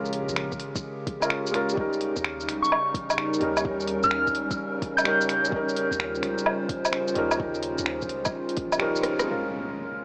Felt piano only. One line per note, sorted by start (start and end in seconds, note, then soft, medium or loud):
0.00 1.20 G#3 medium
0.00 1.21 C#4 medium
0.00 1.23 F4 medium
0.00 1.24 A#4 loud
1.20 1.49 G#3 medium
1.20 1.51 C#4 medium
1.20 1.52 F4 medium
1.20 1.53 A#4 medium
1.51 1.74 G#3 medium
1.51 1.74 C#4 medium
1.51 1.75 F4 medium
1.55 1.76 A#4 loud
1.72 3.37 G3 medium
1.72 3.38 C#4 medium
1.78 3.40 D#4 medium
1.78 3.41 A#4 loud
3.39 3.59 G3 medium
3.39 3.61 C#4 medium
3.39 3.63 D#4 medium
3.43 3.64 A#4 loud
3.60 5.01 G3 medium
3.60 5.03 C#4 medium
3.65 5.04 D#4 medium
3.65 5.05 A#4 medium
5.03 5.47 G3 medium
5.03 5.49 C#4 medium
5.03 5.51 D#4 medium
5.08 5.51 A#4 loud
5.48 7.12 G3 medium
5.48 7.14 C#4 medium
5.53 7.15 D#4 medium
5.53 7.16 A#4 loud
7.14 7.33 G3 loud
7.14 7.36 C#4 medium
7.14 7.38 D#4 medium
7.18 7.39 A#4 loud
7.35 8.76 G3 medium
7.35 8.78 C#4 medium
7.40 8.79 D#4 medium
7.40 8.80 A#4 medium
8.78 9.24 G3 loud
8.78 9.24 C#4 medium
8.78 9.26 D#4 medium
8.78 9.26 A#4 loud
9.23 10.05 G#3 medium
9.23 10.05 C#4 medium
9.28 10.05 F4 medium
9.28 10.05 A#4 medium